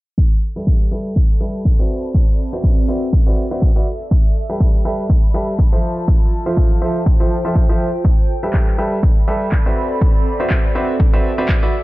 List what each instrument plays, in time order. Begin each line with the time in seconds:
0.18 ambient pad A4, kick
0.43 ambient pad A5
0.56 grand piano G3 G4 A4 B4 E5
0.67 kick
0.76 ambient pad B5
0.88 grand piano G3 G4 A4 B4 E5, ambient pad D5
1.16 kick
1.41 grand piano G3 G4 A4 B4 E5
1.65 kick
1.79 grand piano C4 F#4 B4 D5 E5
1.90 ambient pad C4
2.14 kick
2.53 grand piano C4 F#4 B4 D5 E5
2.64 kick
2.80 ambient pad E5
2.88 grand piano C4 F#4 B4 D5 E5
3.13 kick
3.27 grand piano C4 F#4 B4 D5 E5
3.51 grand piano C4 F#4 B4 D5 E5
3.62 kick
3.76 grand piano F#4 B4 D5 E5
4.11 kick
4.35 ambient pad A5
4.50 grand piano G3 G4 A4 B4 E5
4.60 kick
4.76 ambient pad B5
4.85 grand piano G3 G4 A4 B4 E5
5.10 kick
5.34 grand piano G3 G4 A4 B4 E5
5.59 kick
5.73 grand piano F3 F4 A4 C5 E5
5.83 ambient pad F4
6.08 kick
6.42 grand piano F3 F4 A4 C5 E5, ambient pad G5
6.48 ambient pad C5
6.57 kick
6.82 grand piano F3 F4 A4 C5 E5
7.06 kick
7.20 grand piano F3 F4 A4 C5 E5
7.45 grand piano F3 F4 A4 C5 E5
7.55 kick
7.69 grand piano F3 F4 A4 C5 E5
8.05 ambient pad A4, kick
8.30 ambient pad D5
8.43 grand piano G3 G4 A4 B4 E5
8.53 kick, clap
8.67 clap
8.78 grand piano G3 G4 A4 B4 E5
8.83 ambient pad B5
9.03 kick
9.28 grand piano G3 G4 A4 B4 E5
9.52 kick, clap
9.66 grand piano C4 F#4 B4 D5 E5
9.77 ambient pad C4
10.01 kick
10.40 grand piano C4 F#4 B4 D5 E5
10.50 kick, clap
10.67 ambient pad E5
10.75 grand piano C4 F#4 B4 D5 E5
11.00 kick
11.13 grand piano C4 F#4 B4 D5 E5
11.38 grand piano C4 F#4 B4 D5 E5
11.49 kick, clap
11.63 grand piano F#4 B4 D5 E5